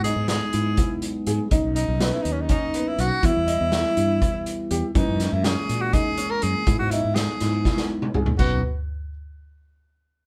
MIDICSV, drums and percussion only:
0, 0, Header, 1, 2, 480
1, 0, Start_track
1, 0, Key_signature, 5, "major"
1, 0, Tempo, 490998
1, 1485, Time_signature, 7, 3, 24, 8
1, 10030, End_track
2, 0, Start_track
2, 0, Title_t, "Drums"
2, 42, Note_on_c, 9, 42, 57
2, 140, Note_off_c, 9, 42, 0
2, 275, Note_on_c, 9, 38, 94
2, 275, Note_on_c, 9, 42, 72
2, 372, Note_off_c, 9, 38, 0
2, 372, Note_off_c, 9, 42, 0
2, 516, Note_on_c, 9, 42, 56
2, 614, Note_off_c, 9, 42, 0
2, 756, Note_on_c, 9, 42, 76
2, 760, Note_on_c, 9, 36, 96
2, 854, Note_off_c, 9, 42, 0
2, 858, Note_off_c, 9, 36, 0
2, 997, Note_on_c, 9, 42, 55
2, 1095, Note_off_c, 9, 42, 0
2, 1237, Note_on_c, 9, 42, 56
2, 1335, Note_off_c, 9, 42, 0
2, 1478, Note_on_c, 9, 42, 79
2, 1481, Note_on_c, 9, 36, 94
2, 1575, Note_off_c, 9, 42, 0
2, 1578, Note_off_c, 9, 36, 0
2, 1720, Note_on_c, 9, 42, 60
2, 1818, Note_off_c, 9, 42, 0
2, 1960, Note_on_c, 9, 38, 96
2, 1960, Note_on_c, 9, 42, 79
2, 2058, Note_off_c, 9, 38, 0
2, 2058, Note_off_c, 9, 42, 0
2, 2201, Note_on_c, 9, 42, 57
2, 2298, Note_off_c, 9, 42, 0
2, 2434, Note_on_c, 9, 42, 72
2, 2440, Note_on_c, 9, 36, 92
2, 2532, Note_off_c, 9, 42, 0
2, 2538, Note_off_c, 9, 36, 0
2, 2678, Note_on_c, 9, 42, 57
2, 2776, Note_off_c, 9, 42, 0
2, 2919, Note_on_c, 9, 42, 51
2, 3017, Note_off_c, 9, 42, 0
2, 3159, Note_on_c, 9, 42, 72
2, 3160, Note_on_c, 9, 36, 94
2, 3257, Note_off_c, 9, 42, 0
2, 3258, Note_off_c, 9, 36, 0
2, 3399, Note_on_c, 9, 42, 55
2, 3497, Note_off_c, 9, 42, 0
2, 3636, Note_on_c, 9, 38, 93
2, 3636, Note_on_c, 9, 42, 67
2, 3734, Note_off_c, 9, 38, 0
2, 3734, Note_off_c, 9, 42, 0
2, 3881, Note_on_c, 9, 42, 50
2, 3979, Note_off_c, 9, 42, 0
2, 4123, Note_on_c, 9, 36, 92
2, 4123, Note_on_c, 9, 42, 71
2, 4221, Note_off_c, 9, 36, 0
2, 4221, Note_off_c, 9, 42, 0
2, 4362, Note_on_c, 9, 42, 53
2, 4460, Note_off_c, 9, 42, 0
2, 4602, Note_on_c, 9, 42, 57
2, 4700, Note_off_c, 9, 42, 0
2, 4841, Note_on_c, 9, 42, 74
2, 4842, Note_on_c, 9, 36, 100
2, 4939, Note_off_c, 9, 42, 0
2, 4940, Note_off_c, 9, 36, 0
2, 5082, Note_on_c, 9, 38, 33
2, 5082, Note_on_c, 9, 42, 59
2, 5180, Note_off_c, 9, 38, 0
2, 5180, Note_off_c, 9, 42, 0
2, 5321, Note_on_c, 9, 38, 96
2, 5321, Note_on_c, 9, 42, 77
2, 5419, Note_off_c, 9, 38, 0
2, 5419, Note_off_c, 9, 42, 0
2, 5565, Note_on_c, 9, 42, 59
2, 5663, Note_off_c, 9, 42, 0
2, 5800, Note_on_c, 9, 42, 77
2, 5802, Note_on_c, 9, 36, 95
2, 5898, Note_off_c, 9, 42, 0
2, 5899, Note_off_c, 9, 36, 0
2, 6037, Note_on_c, 9, 42, 60
2, 6135, Note_off_c, 9, 42, 0
2, 6276, Note_on_c, 9, 42, 57
2, 6374, Note_off_c, 9, 42, 0
2, 6518, Note_on_c, 9, 42, 78
2, 6520, Note_on_c, 9, 36, 102
2, 6616, Note_off_c, 9, 42, 0
2, 6618, Note_off_c, 9, 36, 0
2, 6758, Note_on_c, 9, 42, 58
2, 6856, Note_off_c, 9, 42, 0
2, 6998, Note_on_c, 9, 38, 92
2, 6998, Note_on_c, 9, 42, 76
2, 7095, Note_off_c, 9, 38, 0
2, 7095, Note_off_c, 9, 42, 0
2, 7239, Note_on_c, 9, 38, 30
2, 7239, Note_on_c, 9, 42, 56
2, 7337, Note_off_c, 9, 38, 0
2, 7337, Note_off_c, 9, 42, 0
2, 7481, Note_on_c, 9, 36, 89
2, 7481, Note_on_c, 9, 38, 54
2, 7578, Note_off_c, 9, 38, 0
2, 7579, Note_off_c, 9, 36, 0
2, 7598, Note_on_c, 9, 38, 52
2, 7695, Note_off_c, 9, 38, 0
2, 7842, Note_on_c, 9, 47, 65
2, 7940, Note_off_c, 9, 47, 0
2, 7961, Note_on_c, 9, 45, 79
2, 8059, Note_off_c, 9, 45, 0
2, 8076, Note_on_c, 9, 43, 72
2, 8174, Note_off_c, 9, 43, 0
2, 8201, Note_on_c, 9, 49, 80
2, 8202, Note_on_c, 9, 36, 96
2, 8299, Note_off_c, 9, 36, 0
2, 8299, Note_off_c, 9, 49, 0
2, 10030, End_track
0, 0, End_of_file